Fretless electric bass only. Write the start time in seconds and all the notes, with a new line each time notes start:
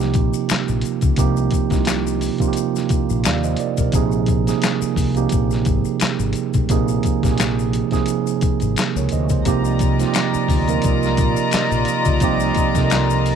Already playing: C2
0.15 A#1
0.51 muted fretless electric bass stroke
0.69 A#1
1.03 C#2
1.19 C2
1.72 C2
2.90 muted fretless electric bass stroke
3.10 A#1
3.26 D#2
3.79 B1
3.94 A#1
4.82 muted fretless electric bass stroke
4.97 C2
5.33 A#1
5.67 G#1
6.02 muted fretless electric bass stroke
6.19 G#1
6.55 B1
6.70 A#1
7.24 A#1
8.43 muted fretless electric bass stroke
8.62 G#1
8.96 C#2
9.12 D2
9.31 C#2
9.46 C2
10.34 muted fretless electric bass stroke
10.49 D2
10.85 C2
11.19 A#1
11.53 muted fretless electric bass stroke
11.71 A#1
12.07 C#2
12.22 C2
12.76 C2